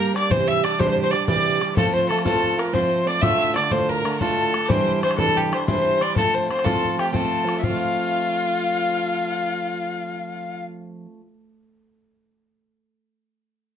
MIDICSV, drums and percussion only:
0, 0, Header, 1, 2, 480
1, 0, Start_track
1, 0, Key_signature, -1, "major"
1, 0, Tempo, 325027
1, 465, Time_signature, 9, 3, 24, 8
1, 20325, End_track
2, 0, Start_track
2, 0, Title_t, "Bodhran"
2, 236, Note_on_c, 9, 64, 66
2, 384, Note_off_c, 9, 64, 0
2, 460, Note_on_c, 9, 64, 77
2, 608, Note_off_c, 9, 64, 0
2, 722, Note_on_c, 9, 64, 23
2, 870, Note_off_c, 9, 64, 0
2, 955, Note_on_c, 9, 64, 64
2, 1102, Note_off_c, 9, 64, 0
2, 1185, Note_on_c, 9, 64, 97
2, 1318, Note_off_c, 9, 64, 0
2, 1318, Note_on_c, 9, 64, 27
2, 1444, Note_off_c, 9, 64, 0
2, 1444, Note_on_c, 9, 64, 26
2, 1591, Note_off_c, 9, 64, 0
2, 1669, Note_on_c, 9, 64, 59
2, 1816, Note_off_c, 9, 64, 0
2, 1891, Note_on_c, 9, 64, 82
2, 2027, Note_off_c, 9, 64, 0
2, 2027, Note_on_c, 9, 64, 26
2, 2175, Note_off_c, 9, 64, 0
2, 2384, Note_on_c, 9, 64, 59
2, 2532, Note_off_c, 9, 64, 0
2, 2616, Note_on_c, 9, 64, 85
2, 2764, Note_off_c, 9, 64, 0
2, 2878, Note_on_c, 9, 64, 22
2, 3026, Note_off_c, 9, 64, 0
2, 3111, Note_on_c, 9, 64, 58
2, 3228, Note_off_c, 9, 64, 0
2, 3228, Note_on_c, 9, 64, 48
2, 3336, Note_off_c, 9, 64, 0
2, 3336, Note_on_c, 9, 64, 80
2, 3473, Note_off_c, 9, 64, 0
2, 3473, Note_on_c, 9, 64, 27
2, 3597, Note_off_c, 9, 64, 0
2, 3597, Note_on_c, 9, 64, 26
2, 3745, Note_off_c, 9, 64, 0
2, 3830, Note_on_c, 9, 64, 58
2, 3978, Note_off_c, 9, 64, 0
2, 4054, Note_on_c, 9, 64, 80
2, 4184, Note_off_c, 9, 64, 0
2, 4184, Note_on_c, 9, 64, 25
2, 4332, Note_off_c, 9, 64, 0
2, 4537, Note_on_c, 9, 64, 46
2, 4684, Note_off_c, 9, 64, 0
2, 4765, Note_on_c, 9, 64, 79
2, 4912, Note_off_c, 9, 64, 0
2, 5030, Note_on_c, 9, 64, 21
2, 5178, Note_off_c, 9, 64, 0
2, 5257, Note_on_c, 9, 64, 62
2, 5371, Note_off_c, 9, 64, 0
2, 5371, Note_on_c, 9, 64, 47
2, 5484, Note_off_c, 9, 64, 0
2, 5484, Note_on_c, 9, 64, 70
2, 5623, Note_off_c, 9, 64, 0
2, 5623, Note_on_c, 9, 64, 27
2, 5755, Note_off_c, 9, 64, 0
2, 5755, Note_on_c, 9, 64, 27
2, 5902, Note_off_c, 9, 64, 0
2, 5986, Note_on_c, 9, 64, 60
2, 6133, Note_off_c, 9, 64, 0
2, 6216, Note_on_c, 9, 64, 77
2, 6348, Note_off_c, 9, 64, 0
2, 6348, Note_on_c, 9, 64, 27
2, 6496, Note_off_c, 9, 64, 0
2, 6707, Note_on_c, 9, 64, 65
2, 6854, Note_off_c, 9, 64, 0
2, 6939, Note_on_c, 9, 64, 87
2, 7086, Note_off_c, 9, 64, 0
2, 7208, Note_on_c, 9, 64, 27
2, 7356, Note_off_c, 9, 64, 0
2, 7431, Note_on_c, 9, 64, 60
2, 7543, Note_off_c, 9, 64, 0
2, 7543, Note_on_c, 9, 64, 61
2, 7658, Note_off_c, 9, 64, 0
2, 7658, Note_on_c, 9, 64, 89
2, 7798, Note_off_c, 9, 64, 0
2, 7798, Note_on_c, 9, 64, 28
2, 7934, Note_off_c, 9, 64, 0
2, 7934, Note_on_c, 9, 64, 26
2, 8081, Note_off_c, 9, 64, 0
2, 8165, Note_on_c, 9, 64, 62
2, 8312, Note_off_c, 9, 64, 0
2, 8393, Note_on_c, 9, 64, 85
2, 8537, Note_off_c, 9, 64, 0
2, 8537, Note_on_c, 9, 64, 25
2, 8685, Note_off_c, 9, 64, 0
2, 8880, Note_on_c, 9, 64, 52
2, 9028, Note_off_c, 9, 64, 0
2, 9101, Note_on_c, 9, 64, 75
2, 9249, Note_off_c, 9, 64, 0
2, 9369, Note_on_c, 9, 64, 20
2, 9516, Note_off_c, 9, 64, 0
2, 9608, Note_on_c, 9, 64, 54
2, 9732, Note_off_c, 9, 64, 0
2, 9732, Note_on_c, 9, 64, 54
2, 9837, Note_off_c, 9, 64, 0
2, 9837, Note_on_c, 9, 64, 89
2, 9975, Note_off_c, 9, 64, 0
2, 9975, Note_on_c, 9, 64, 26
2, 10112, Note_off_c, 9, 64, 0
2, 10112, Note_on_c, 9, 64, 25
2, 10260, Note_off_c, 9, 64, 0
2, 10328, Note_on_c, 9, 64, 58
2, 10476, Note_off_c, 9, 64, 0
2, 10554, Note_on_c, 9, 64, 84
2, 10690, Note_off_c, 9, 64, 0
2, 10690, Note_on_c, 9, 64, 27
2, 10837, Note_off_c, 9, 64, 0
2, 11056, Note_on_c, 9, 64, 54
2, 11203, Note_off_c, 9, 64, 0
2, 11274, Note_on_c, 9, 64, 78
2, 11422, Note_off_c, 9, 64, 0
2, 20325, End_track
0, 0, End_of_file